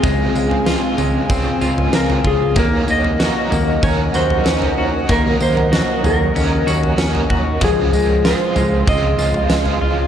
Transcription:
<<
  \new Staff \with { instrumentName = "Ambient pad" } { \time 4/4 \key des \major \tempo 4 = 95 <c' f'' aes''>1 | <bes' ees'' ges''>1~ | <bes' ees'' ges''>1 | <aes' f'' c'''>1 | }
  \new Staff \with { instrumentName = "Electric slide guitar" } { \time 4/4 \key des \major aes'4. r4. bes'8 aes'8 | bes'8 ees''4. des''8 c''4. | bes'8 c''4 bes'2 r8 | aes'4 c''4 ees''2 | }
  \new Staff \with { instrumentName = "Clean electric guitar" } { \time 4/4 \key des \major <aes c' f'>8 aes8 f'8 aes8 c'8 f'8 c'8 f'8 | bes8 bes8 ges'8 bes8 des'8 ges'8 des'8 ges'8 | bes8 bes8 ges'8 bes8 des'8 ges'8 des'8 ges'8 | f8 aes8 f'8 aes8 c'8 f'4 f'8 | }
  \new Staff \with { instrumentName = "Overdriven electric guitar" } { \time 4/4 \key des \major <des aes c' f'>4 <des aes c' f'>4 <des aes c' f'>4 <des aes c' f'>4 | <ees ges des' ees' bes'>4 <ges des' ees' bes'>4 <ges des' ees' bes'>4 <ges des' ees' bes'>4 | <ees ges des' ees' bes'>2 <ges des' ees' bes'>4 <ges des' ees' bes'>4 | <des aes c' f' aes'>4 <aes c' f' aes'>4 <aes c' f' aes'>4 <aes c' f' aes'>4 | }
  \new Staff \with { instrumentName = "Analog synth bass" } { \clef bass \time 4/4 \key des \major des,8 des,8. r16 des,8 des,8 des,8 des,8 des,8 | ees,8 ees,8. r16 ees,8 ees,8 ees,8 ees,8 ees,8 | ees,8 ees,8. r16 ees,8 ees,8 ees,8 ees,8 ees,8 | des,8 des,8. r16 des,8 des,8 des,8 des,8 des,8 | }
  \new DrumStaff \with { instrumentName = "Drums" } \drummode { \time 4/4 <bd tamb tomfh>8 tamb16 tomfh16 <sn tamb>8 <tamb tomfh>8 <bd tamb tomfh>8 tamb16 tomfh16 <sn tamb>16 tomfh16 bd8 | <bd tamb tomfh>8 tamb16 tomfh16 <sn tamb>8 <tamb tomfh>8 <bd tamb tomfh>8 tamb16 tomfh16 <sn tamb>16 tomfh8. | <bd tamb tomfh>8 tamb16 tomfh16 <sn tamb>8 <tamb tomfh>8 <tamb tomfh>8 tamb16 tomfh16 <sn tamb>16 tomfh16 bd8 | <bd tamb tomfh>8 tamb8 <sn tamb>8 <tamb tomfh>8 <bd tamb tomfh>8 tamb16 tomfh16 <sn tamb>16 tomfh8. | }
>>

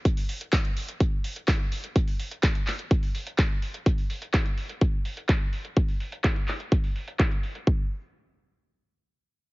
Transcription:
\new DrumStaff \with { instrumentName = "Drums" } \drummode { \time 4/4 \tempo 4 = 126 <hh bd>16 hho16 hho16 hh16 <hc hh bd>16 hh16 hho16 hh16 <hh bd>8 hho16 hh16 <hc hh bd>8 hho16 hh16 | <hh bd>16 hho16 hho16 hh16 <hc hh bd>16 hh16 <hc hho>16 hh16 <hh bd>16 hho16 hho16 hh16 <hc hh bd>8 hho16 hh16 | <hh bd>16 hho16 hho16 hh16 <hc hh bd>16 hh16 hho16 hh16 <hh bd>8 hho16 hh16 <hc hh bd>8 hho16 hh16 | <hh bd>16 hho16 hho16 hh16 <hc hh bd>16 hh16 <hc hho>16 hh16 <hh bd>16 hho16 hho16 hh16 <hc hh bd>16 hh16 hho16 hh16 |
bd4 r4 r4 r4 | }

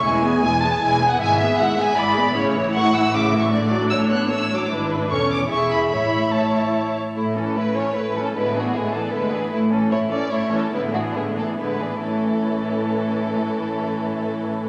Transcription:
<<
  \new Staff \with { instrumentName = "Violin section" } { \time 3/4 \key a \major \tempo 4 = 152 r4 gis''8 a''8 \tuplet 3/2 { gis''4 fis''8 } | gis''8 e''8 fis''8 gis''8 b''4 | r4 cis'''8 e'''8 \tuplet 3/2 { d'''4 cis'''8 } | r4 e'''8 fis'''8 \tuplet 3/2 { e'''4 d'''8 } |
r4 cis'''8 d'''8 cis'''8 b''8 | b''4 a''4. r8 | r4 b'8 cis''8 \tuplet 3/2 { b'4 a'8 } | b'8 fis'8 gis'8 a'8 b'4 |
r4 cis''8 d''8 \tuplet 3/2 { cis''4 a'8 } | b'8 fis'8 gis'8 a'8 b'4 | a'2.~ | a'2. | }
  \new Staff \with { instrumentName = "Violin section" } { \time 3/4 \key a \major gis''2. | e''2 d''4 | cis''4 fis''4 e''4 | d''4 cis''2 |
b'4 cis''4 e''4 | e''2~ e''8 r8 | e'8 <cis' a'>8 e'8 <cis' a'>8 e'8 <cis' a'>8 | <b e'>8 <d' gis'>8 <b e'>8 <d' gis'>8 <b e'>8 <d' gis'>8 |
e'8 <cis' a'>8 e'8 <cis' a'>8 e'8 <cis' a'>8 | <b e'>8 <d' gis'>8 <b e'>8 <d' gis'>8 <b e'>8 <d' gis'>8 | <cis' e'>2.~ | <cis' e'>2. | }
  \new Staff \with { instrumentName = "Viola section" } { \time 3/4 \key a \major << { e'8 gis'8 e'8 gis'8 e'8 gis'8 | e'8 gis'8 e'8 gis'8 e'8 gis'8 | e'2. | d'2. |
e'4 a'4 gis'4 | cis''4 cis''4. r8 | a8 cis'8 a8 cis'8 a8 cis'8 | gis8 b8 gis8 b8 gis8 b8 |
a8 cis'8 a8 cis'8 a8 cis'8 | gis8 b8 gis8 b8 gis8 b8 | a2.~ | a2. | } \\ { gis8 b8 gis8 b8 gis8 b8 | gis8 b8 gis8 b8 gis8 b8 | cis8 e8 a8 e8 cis8 e8 | d8 fis8 a8 b8 a8 fis8 |
d'4 cis'4 e'4 | e'4 e'4. r8 | a8 e8 a8 e8 a8 e8 | d8 e8 d8 e8 d8 e8 |
a8 e8 a8 e8 a8 e8 | d8 e8 d8 e8 d8 e8 | e2.~ | e2. | } >> }
  \new Staff \with { instrumentName = "Cello section" } { \clef bass \time 3/4 \key a \major e,4 e,4 e,4 | gis,4 gis,4 gis,4 | a,2.~ | a,2. |
gis,4 e,4 e,4 | a,2~ a,8 r8 | a,4 a,4 a,4 | a,4 a,4 a,4 |
a,4 a,4 a,4 | a,4 a,4 a,4 | a,2.~ | a,2. | }
  \new Staff \with { instrumentName = "Double bass section" } { \clef bass \time 3/4 \key a \major e,,4 e,,4 e,,4 | gis,,4 gis,,4 gis,,4 | a,,2.~ | a,,2. |
gis,,4 e,,4 e,,4 | a,,2~ a,,8 r8 | r2. | r2. |
r2. | r2. | r2. | r2. | }
>>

